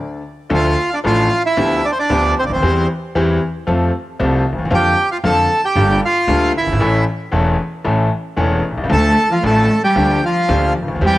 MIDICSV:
0, 0, Header, 1, 5, 480
1, 0, Start_track
1, 0, Key_signature, -1, "minor"
1, 0, Tempo, 525394
1, 473, Time_signature, 4, 2, 24, 8
1, 10216, End_track
2, 0, Start_track
2, 0, Title_t, "Bandoneon"
2, 0, Program_c, 0, 23
2, 490, Note_on_c, 0, 65, 81
2, 508, Note_on_c, 0, 77, 102
2, 821, Note_off_c, 0, 65, 0
2, 854, Note_on_c, 0, 62, 64
2, 861, Note_on_c, 0, 74, 84
2, 865, Note_off_c, 0, 77, 0
2, 905, Note_off_c, 0, 62, 0
2, 910, Note_off_c, 0, 74, 0
2, 967, Note_on_c, 0, 65, 80
2, 976, Note_on_c, 0, 77, 104
2, 1300, Note_off_c, 0, 65, 0
2, 1304, Note_off_c, 0, 77, 0
2, 1330, Note_on_c, 0, 64, 74
2, 1339, Note_on_c, 0, 76, 103
2, 1660, Note_off_c, 0, 64, 0
2, 1692, Note_on_c, 0, 74, 96
2, 1700, Note_off_c, 0, 76, 0
2, 1700, Note_on_c, 0, 62, 77
2, 1745, Note_off_c, 0, 74, 0
2, 1750, Note_off_c, 0, 62, 0
2, 1755, Note_on_c, 0, 72, 88
2, 1812, Note_off_c, 0, 72, 0
2, 1819, Note_on_c, 0, 74, 98
2, 1826, Note_on_c, 0, 62, 74
2, 2141, Note_off_c, 0, 74, 0
2, 2145, Note_off_c, 0, 62, 0
2, 2183, Note_on_c, 0, 72, 77
2, 2191, Note_on_c, 0, 60, 62
2, 2230, Note_off_c, 0, 72, 0
2, 2235, Note_off_c, 0, 60, 0
2, 2248, Note_on_c, 0, 74, 59
2, 2298, Note_off_c, 0, 74, 0
2, 2307, Note_on_c, 0, 72, 80
2, 2313, Note_on_c, 0, 60, 65
2, 2624, Note_off_c, 0, 72, 0
2, 2628, Note_off_c, 0, 60, 0
2, 4332, Note_on_c, 0, 79, 105
2, 4336, Note_on_c, 0, 67, 80
2, 4653, Note_off_c, 0, 79, 0
2, 4655, Note_off_c, 0, 67, 0
2, 4674, Note_on_c, 0, 77, 93
2, 4680, Note_on_c, 0, 65, 68
2, 4726, Note_off_c, 0, 77, 0
2, 4730, Note_off_c, 0, 65, 0
2, 4795, Note_on_c, 0, 81, 110
2, 4803, Note_on_c, 0, 69, 92
2, 5127, Note_off_c, 0, 69, 0
2, 5158, Note_off_c, 0, 81, 0
2, 5162, Note_on_c, 0, 79, 99
2, 5166, Note_on_c, 0, 67, 77
2, 5485, Note_off_c, 0, 79, 0
2, 5488, Note_off_c, 0, 67, 0
2, 5529, Note_on_c, 0, 77, 114
2, 5534, Note_on_c, 0, 65, 83
2, 5959, Note_off_c, 0, 77, 0
2, 5961, Note_off_c, 0, 65, 0
2, 6003, Note_on_c, 0, 64, 66
2, 6006, Note_on_c, 0, 76, 89
2, 6435, Note_off_c, 0, 64, 0
2, 6437, Note_off_c, 0, 76, 0
2, 8154, Note_on_c, 0, 81, 114
2, 8161, Note_on_c, 0, 69, 91
2, 8490, Note_off_c, 0, 69, 0
2, 8513, Note_on_c, 0, 77, 82
2, 8522, Note_off_c, 0, 81, 0
2, 8522, Note_on_c, 0, 65, 64
2, 8621, Note_off_c, 0, 77, 0
2, 8626, Note_off_c, 0, 65, 0
2, 8643, Note_on_c, 0, 81, 93
2, 8649, Note_on_c, 0, 69, 83
2, 8970, Note_off_c, 0, 81, 0
2, 8973, Note_off_c, 0, 69, 0
2, 8989, Note_on_c, 0, 79, 90
2, 9000, Note_on_c, 0, 67, 71
2, 9329, Note_off_c, 0, 67, 0
2, 9359, Note_off_c, 0, 79, 0
2, 9368, Note_on_c, 0, 77, 92
2, 9369, Note_on_c, 0, 65, 71
2, 9804, Note_off_c, 0, 77, 0
2, 9805, Note_off_c, 0, 65, 0
2, 10105, Note_on_c, 0, 67, 84
2, 10111, Note_on_c, 0, 79, 113
2, 10216, Note_off_c, 0, 67, 0
2, 10216, Note_off_c, 0, 79, 0
2, 10216, End_track
3, 0, Start_track
3, 0, Title_t, "Cello"
3, 0, Program_c, 1, 42
3, 8144, Note_on_c, 1, 57, 95
3, 8480, Note_off_c, 1, 57, 0
3, 8500, Note_on_c, 1, 53, 75
3, 8614, Note_off_c, 1, 53, 0
3, 8619, Note_on_c, 1, 57, 93
3, 8957, Note_off_c, 1, 57, 0
3, 8985, Note_on_c, 1, 55, 78
3, 9321, Note_off_c, 1, 55, 0
3, 9357, Note_on_c, 1, 53, 77
3, 9798, Note_off_c, 1, 53, 0
3, 10079, Note_on_c, 1, 55, 100
3, 10216, Note_off_c, 1, 55, 0
3, 10216, End_track
4, 0, Start_track
4, 0, Title_t, "Grand piano"
4, 0, Program_c, 2, 0
4, 0, Note_on_c, 2, 38, 41
4, 0, Note_on_c, 2, 50, 41
4, 181, Note_off_c, 2, 38, 0
4, 183, Note_off_c, 2, 50, 0
4, 452, Note_on_c, 2, 57, 66
4, 454, Note_on_c, 2, 53, 79
4, 457, Note_on_c, 2, 69, 88
4, 459, Note_on_c, 2, 38, 96
4, 459, Note_on_c, 2, 50, 93
4, 460, Note_on_c, 2, 62, 73
4, 667, Note_off_c, 2, 57, 0
4, 668, Note_off_c, 2, 53, 0
4, 669, Note_off_c, 2, 69, 0
4, 670, Note_off_c, 2, 38, 0
4, 670, Note_off_c, 2, 50, 0
4, 671, Note_off_c, 2, 62, 0
4, 948, Note_on_c, 2, 53, 87
4, 951, Note_on_c, 2, 57, 73
4, 953, Note_on_c, 2, 45, 94
4, 955, Note_on_c, 2, 33, 101
4, 956, Note_on_c, 2, 62, 78
4, 957, Note_on_c, 2, 69, 91
4, 1156, Note_off_c, 2, 53, 0
4, 1158, Note_off_c, 2, 57, 0
4, 1159, Note_off_c, 2, 45, 0
4, 1160, Note_off_c, 2, 33, 0
4, 1160, Note_off_c, 2, 62, 0
4, 1161, Note_off_c, 2, 69, 0
4, 1433, Note_on_c, 2, 53, 72
4, 1433, Note_on_c, 2, 59, 67
4, 1435, Note_on_c, 2, 62, 74
4, 1436, Note_on_c, 2, 50, 84
4, 1436, Note_on_c, 2, 67, 90
4, 1437, Note_on_c, 2, 38, 101
4, 1638, Note_off_c, 2, 53, 0
4, 1638, Note_off_c, 2, 59, 0
4, 1639, Note_off_c, 2, 50, 0
4, 1639, Note_off_c, 2, 62, 0
4, 1640, Note_off_c, 2, 38, 0
4, 1640, Note_off_c, 2, 67, 0
4, 1915, Note_on_c, 2, 53, 84
4, 1916, Note_on_c, 2, 67, 84
4, 1918, Note_on_c, 2, 50, 100
4, 1918, Note_on_c, 2, 59, 82
4, 1919, Note_on_c, 2, 38, 94
4, 1920, Note_on_c, 2, 62, 76
4, 2119, Note_off_c, 2, 53, 0
4, 2119, Note_off_c, 2, 67, 0
4, 2120, Note_off_c, 2, 50, 0
4, 2120, Note_off_c, 2, 59, 0
4, 2121, Note_off_c, 2, 38, 0
4, 2121, Note_off_c, 2, 62, 0
4, 2224, Note_on_c, 2, 37, 57
4, 2281, Note_off_c, 2, 37, 0
4, 2282, Note_on_c, 2, 38, 71
4, 2336, Note_on_c, 2, 39, 79
4, 2340, Note_off_c, 2, 38, 0
4, 2396, Note_on_c, 2, 52, 89
4, 2397, Note_off_c, 2, 39, 0
4, 2398, Note_on_c, 2, 55, 70
4, 2399, Note_on_c, 2, 40, 99
4, 2401, Note_on_c, 2, 60, 80
4, 2402, Note_on_c, 2, 67, 86
4, 2599, Note_off_c, 2, 55, 0
4, 2600, Note_off_c, 2, 40, 0
4, 2600, Note_off_c, 2, 52, 0
4, 2600, Note_off_c, 2, 60, 0
4, 2601, Note_off_c, 2, 67, 0
4, 2879, Note_on_c, 2, 52, 106
4, 2882, Note_on_c, 2, 40, 110
4, 2882, Note_on_c, 2, 55, 77
4, 2882, Note_on_c, 2, 60, 84
4, 2888, Note_on_c, 2, 67, 95
4, 3080, Note_off_c, 2, 40, 0
4, 3080, Note_off_c, 2, 52, 0
4, 3080, Note_off_c, 2, 55, 0
4, 3080, Note_off_c, 2, 60, 0
4, 3083, Note_off_c, 2, 67, 0
4, 3349, Note_on_c, 2, 57, 73
4, 3351, Note_on_c, 2, 41, 86
4, 3351, Note_on_c, 2, 53, 89
4, 3356, Note_on_c, 2, 69, 86
4, 3357, Note_on_c, 2, 60, 73
4, 3551, Note_off_c, 2, 57, 0
4, 3552, Note_off_c, 2, 41, 0
4, 3554, Note_off_c, 2, 53, 0
4, 3555, Note_off_c, 2, 60, 0
4, 3555, Note_off_c, 2, 69, 0
4, 3832, Note_on_c, 2, 48, 94
4, 3832, Note_on_c, 2, 53, 80
4, 3833, Note_on_c, 2, 57, 74
4, 3834, Note_on_c, 2, 36, 97
4, 3835, Note_on_c, 2, 60, 74
4, 3838, Note_on_c, 2, 69, 88
4, 4031, Note_off_c, 2, 53, 0
4, 4032, Note_off_c, 2, 36, 0
4, 4032, Note_off_c, 2, 48, 0
4, 4032, Note_off_c, 2, 57, 0
4, 4033, Note_off_c, 2, 60, 0
4, 4034, Note_off_c, 2, 69, 0
4, 4137, Note_on_c, 2, 38, 59
4, 4192, Note_off_c, 2, 38, 0
4, 4192, Note_on_c, 2, 39, 76
4, 4250, Note_off_c, 2, 39, 0
4, 4250, Note_on_c, 2, 40, 82
4, 4299, Note_on_c, 2, 41, 96
4, 4300, Note_on_c, 2, 50, 78
4, 4300, Note_on_c, 2, 53, 103
4, 4301, Note_on_c, 2, 58, 74
4, 4302, Note_on_c, 2, 60, 69
4, 4304, Note_on_c, 2, 65, 91
4, 4309, Note_off_c, 2, 40, 0
4, 4503, Note_off_c, 2, 41, 0
4, 4504, Note_off_c, 2, 50, 0
4, 4504, Note_off_c, 2, 53, 0
4, 4505, Note_off_c, 2, 58, 0
4, 4505, Note_off_c, 2, 60, 0
4, 4506, Note_off_c, 2, 65, 0
4, 4784, Note_on_c, 2, 58, 84
4, 4786, Note_on_c, 2, 41, 101
4, 4786, Note_on_c, 2, 50, 89
4, 4786, Note_on_c, 2, 53, 106
4, 4790, Note_on_c, 2, 60, 80
4, 4790, Note_on_c, 2, 65, 92
4, 4984, Note_off_c, 2, 58, 0
4, 4985, Note_off_c, 2, 41, 0
4, 4985, Note_off_c, 2, 50, 0
4, 4985, Note_off_c, 2, 53, 0
4, 4987, Note_off_c, 2, 60, 0
4, 4987, Note_off_c, 2, 65, 0
4, 5263, Note_on_c, 2, 55, 87
4, 5263, Note_on_c, 2, 58, 77
4, 5264, Note_on_c, 2, 43, 87
4, 5265, Note_on_c, 2, 62, 75
4, 5267, Note_on_c, 2, 31, 93
4, 5271, Note_on_c, 2, 69, 94
4, 5463, Note_off_c, 2, 43, 0
4, 5463, Note_off_c, 2, 55, 0
4, 5463, Note_off_c, 2, 58, 0
4, 5463, Note_off_c, 2, 62, 0
4, 5465, Note_off_c, 2, 31, 0
4, 5467, Note_off_c, 2, 69, 0
4, 5736, Note_on_c, 2, 50, 97
4, 5738, Note_on_c, 2, 38, 99
4, 5738, Note_on_c, 2, 55, 79
4, 5739, Note_on_c, 2, 58, 74
4, 5739, Note_on_c, 2, 62, 74
4, 5742, Note_on_c, 2, 69, 89
4, 5937, Note_off_c, 2, 50, 0
4, 5938, Note_off_c, 2, 38, 0
4, 5938, Note_off_c, 2, 55, 0
4, 5939, Note_off_c, 2, 58, 0
4, 5939, Note_off_c, 2, 62, 0
4, 5940, Note_off_c, 2, 69, 0
4, 6040, Note_on_c, 2, 30, 59
4, 6093, Note_on_c, 2, 31, 64
4, 6098, Note_off_c, 2, 30, 0
4, 6146, Note_on_c, 2, 32, 79
4, 6154, Note_off_c, 2, 31, 0
4, 6211, Note_off_c, 2, 32, 0
4, 6213, Note_on_c, 2, 33, 98
4, 6213, Note_on_c, 2, 52, 81
4, 6213, Note_on_c, 2, 57, 74
4, 6215, Note_on_c, 2, 61, 74
4, 6217, Note_on_c, 2, 45, 102
4, 6219, Note_on_c, 2, 69, 87
4, 6415, Note_off_c, 2, 33, 0
4, 6415, Note_off_c, 2, 52, 0
4, 6415, Note_off_c, 2, 57, 0
4, 6416, Note_off_c, 2, 61, 0
4, 6417, Note_off_c, 2, 45, 0
4, 6418, Note_off_c, 2, 69, 0
4, 6682, Note_on_c, 2, 57, 74
4, 6685, Note_on_c, 2, 52, 86
4, 6686, Note_on_c, 2, 61, 81
4, 6687, Note_on_c, 2, 28, 98
4, 6689, Note_on_c, 2, 40, 100
4, 6693, Note_on_c, 2, 69, 92
4, 6890, Note_off_c, 2, 57, 0
4, 6891, Note_off_c, 2, 52, 0
4, 6892, Note_off_c, 2, 28, 0
4, 6892, Note_off_c, 2, 61, 0
4, 6893, Note_off_c, 2, 40, 0
4, 6895, Note_off_c, 2, 69, 0
4, 7169, Note_on_c, 2, 33, 94
4, 7169, Note_on_c, 2, 45, 86
4, 7170, Note_on_c, 2, 52, 78
4, 7171, Note_on_c, 2, 57, 69
4, 7171, Note_on_c, 2, 61, 69
4, 7172, Note_on_c, 2, 69, 82
4, 7375, Note_off_c, 2, 33, 0
4, 7375, Note_off_c, 2, 45, 0
4, 7375, Note_off_c, 2, 52, 0
4, 7375, Note_off_c, 2, 57, 0
4, 7375, Note_off_c, 2, 61, 0
4, 7376, Note_off_c, 2, 69, 0
4, 7643, Note_on_c, 2, 52, 80
4, 7646, Note_on_c, 2, 28, 93
4, 7648, Note_on_c, 2, 40, 101
4, 7648, Note_on_c, 2, 57, 69
4, 7648, Note_on_c, 2, 61, 78
4, 7653, Note_on_c, 2, 69, 91
4, 7854, Note_off_c, 2, 52, 0
4, 7855, Note_off_c, 2, 28, 0
4, 7856, Note_off_c, 2, 40, 0
4, 7856, Note_off_c, 2, 57, 0
4, 7856, Note_off_c, 2, 61, 0
4, 7859, Note_off_c, 2, 69, 0
4, 7955, Note_on_c, 2, 35, 57
4, 8018, Note_off_c, 2, 35, 0
4, 8018, Note_on_c, 2, 36, 70
4, 8075, Note_on_c, 2, 37, 81
4, 8080, Note_off_c, 2, 36, 0
4, 8125, Note_on_c, 2, 57, 74
4, 8127, Note_on_c, 2, 50, 94
4, 8127, Note_on_c, 2, 53, 85
4, 8129, Note_on_c, 2, 38, 100
4, 8129, Note_on_c, 2, 62, 69
4, 8130, Note_on_c, 2, 69, 85
4, 8139, Note_off_c, 2, 37, 0
4, 8337, Note_off_c, 2, 57, 0
4, 8338, Note_off_c, 2, 50, 0
4, 8338, Note_off_c, 2, 53, 0
4, 8339, Note_off_c, 2, 38, 0
4, 8339, Note_off_c, 2, 62, 0
4, 8340, Note_off_c, 2, 69, 0
4, 8617, Note_on_c, 2, 53, 78
4, 8620, Note_on_c, 2, 57, 77
4, 8622, Note_on_c, 2, 33, 94
4, 8624, Note_on_c, 2, 45, 96
4, 8624, Note_on_c, 2, 62, 74
4, 8625, Note_on_c, 2, 69, 91
4, 8823, Note_off_c, 2, 53, 0
4, 8824, Note_off_c, 2, 57, 0
4, 8825, Note_off_c, 2, 33, 0
4, 8826, Note_off_c, 2, 45, 0
4, 8826, Note_off_c, 2, 62, 0
4, 8826, Note_off_c, 2, 69, 0
4, 9096, Note_on_c, 2, 58, 67
4, 9097, Note_on_c, 2, 53, 73
4, 9098, Note_on_c, 2, 38, 90
4, 9098, Note_on_c, 2, 62, 74
4, 9099, Note_on_c, 2, 50, 87
4, 9101, Note_on_c, 2, 67, 81
4, 9303, Note_off_c, 2, 58, 0
4, 9304, Note_off_c, 2, 38, 0
4, 9304, Note_off_c, 2, 50, 0
4, 9304, Note_off_c, 2, 53, 0
4, 9304, Note_off_c, 2, 62, 0
4, 9306, Note_off_c, 2, 67, 0
4, 9579, Note_on_c, 2, 53, 89
4, 9581, Note_on_c, 2, 50, 104
4, 9581, Note_on_c, 2, 58, 76
4, 9583, Note_on_c, 2, 62, 78
4, 9585, Note_on_c, 2, 38, 87
4, 9585, Note_on_c, 2, 67, 92
4, 9784, Note_off_c, 2, 53, 0
4, 9785, Note_off_c, 2, 50, 0
4, 9785, Note_off_c, 2, 58, 0
4, 9786, Note_off_c, 2, 62, 0
4, 9787, Note_off_c, 2, 38, 0
4, 9787, Note_off_c, 2, 67, 0
4, 9889, Note_on_c, 2, 37, 51
4, 9940, Note_on_c, 2, 38, 70
4, 9947, Note_off_c, 2, 37, 0
4, 10000, Note_on_c, 2, 39, 78
4, 10003, Note_off_c, 2, 38, 0
4, 10058, Note_on_c, 2, 52, 97
4, 10060, Note_on_c, 2, 55, 73
4, 10062, Note_on_c, 2, 40, 95
4, 10063, Note_off_c, 2, 39, 0
4, 10064, Note_on_c, 2, 60, 77
4, 10066, Note_on_c, 2, 67, 85
4, 10216, Note_off_c, 2, 40, 0
4, 10216, Note_off_c, 2, 52, 0
4, 10216, Note_off_c, 2, 55, 0
4, 10216, Note_off_c, 2, 60, 0
4, 10216, Note_off_c, 2, 67, 0
4, 10216, End_track
5, 0, Start_track
5, 0, Title_t, "Upright bass"
5, 0, Program_c, 3, 32
5, 465, Note_on_c, 3, 38, 108
5, 673, Note_off_c, 3, 38, 0
5, 957, Note_on_c, 3, 33, 95
5, 1161, Note_off_c, 3, 33, 0
5, 1436, Note_on_c, 3, 38, 100
5, 1640, Note_off_c, 3, 38, 0
5, 1919, Note_on_c, 3, 38, 112
5, 2121, Note_off_c, 3, 38, 0
5, 2221, Note_on_c, 3, 37, 52
5, 2274, Note_off_c, 3, 37, 0
5, 2279, Note_on_c, 3, 38, 72
5, 2334, Note_off_c, 3, 38, 0
5, 2339, Note_on_c, 3, 39, 85
5, 2395, Note_off_c, 3, 39, 0
5, 2401, Note_on_c, 3, 40, 115
5, 2600, Note_off_c, 3, 40, 0
5, 2883, Note_on_c, 3, 40, 110
5, 3081, Note_off_c, 3, 40, 0
5, 3358, Note_on_c, 3, 41, 106
5, 3555, Note_off_c, 3, 41, 0
5, 3837, Note_on_c, 3, 36, 110
5, 4034, Note_off_c, 3, 36, 0
5, 4126, Note_on_c, 3, 38, 54
5, 4180, Note_off_c, 3, 38, 0
5, 4186, Note_on_c, 3, 39, 74
5, 4242, Note_off_c, 3, 39, 0
5, 4248, Note_on_c, 3, 40, 87
5, 4299, Note_off_c, 3, 40, 0
5, 4305, Note_on_c, 3, 41, 117
5, 4506, Note_off_c, 3, 41, 0
5, 4784, Note_on_c, 3, 41, 105
5, 4984, Note_off_c, 3, 41, 0
5, 5257, Note_on_c, 3, 31, 112
5, 5460, Note_off_c, 3, 31, 0
5, 5731, Note_on_c, 3, 38, 97
5, 5935, Note_off_c, 3, 38, 0
5, 6030, Note_on_c, 3, 30, 54
5, 6083, Note_off_c, 3, 30, 0
5, 6089, Note_on_c, 3, 31, 71
5, 6141, Note_off_c, 3, 31, 0
5, 6147, Note_on_c, 3, 32, 88
5, 6199, Note_off_c, 3, 32, 0
5, 6204, Note_on_c, 3, 33, 99
5, 6411, Note_off_c, 3, 33, 0
5, 6694, Note_on_c, 3, 28, 97
5, 6896, Note_off_c, 3, 28, 0
5, 7174, Note_on_c, 3, 33, 105
5, 7377, Note_off_c, 3, 33, 0
5, 7650, Note_on_c, 3, 28, 105
5, 7857, Note_off_c, 3, 28, 0
5, 7954, Note_on_c, 3, 35, 51
5, 8007, Note_off_c, 3, 35, 0
5, 8012, Note_on_c, 3, 36, 67
5, 8077, Note_off_c, 3, 36, 0
5, 8083, Note_on_c, 3, 37, 81
5, 8139, Note_off_c, 3, 37, 0
5, 8144, Note_on_c, 3, 38, 103
5, 8347, Note_off_c, 3, 38, 0
5, 8619, Note_on_c, 3, 33, 91
5, 8824, Note_off_c, 3, 33, 0
5, 9097, Note_on_c, 3, 38, 101
5, 9304, Note_off_c, 3, 38, 0
5, 9582, Note_on_c, 3, 38, 99
5, 9786, Note_off_c, 3, 38, 0
5, 9877, Note_on_c, 3, 37, 54
5, 9942, Note_off_c, 3, 37, 0
5, 9948, Note_on_c, 3, 38, 68
5, 10005, Note_off_c, 3, 38, 0
5, 10010, Note_on_c, 3, 39, 81
5, 10054, Note_off_c, 3, 39, 0
5, 10060, Note_on_c, 3, 40, 106
5, 10216, Note_off_c, 3, 40, 0
5, 10216, End_track
0, 0, End_of_file